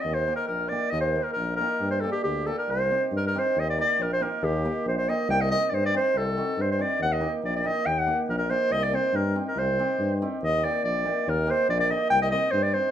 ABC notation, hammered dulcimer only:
X:1
M:2/4
L:1/16
Q:1/4=140
K:Eb
V:1 name="Hammered dulcimer"
z2 [B,EG] z3 [B,EG] z | z2 [B,EB] z3 [B,EG] z | z2 [B,DG] z3 [B,DG] z | z2 [CEG] z3 [CEG] z |
z2 [B,EG] z3 [B,EG] z | z2 [B,EG] z3 [B,EG] z | z2 [CEG] z3 [CEG] z | z2 [CE^F] z3 [CEG] z |
z2 [B,EG] z3 [B,EG] z | z2 [B,EG] z3 [B,EG] z | z2 [CEG] z3 [CEG] z | z2 [CEG] z3 [CEG] z |
z2 [B,EG] z3 [B,EG] z | z2 [B,EG] z3 [B,EG] z | z2 [CEG] z3 [CEG] z |]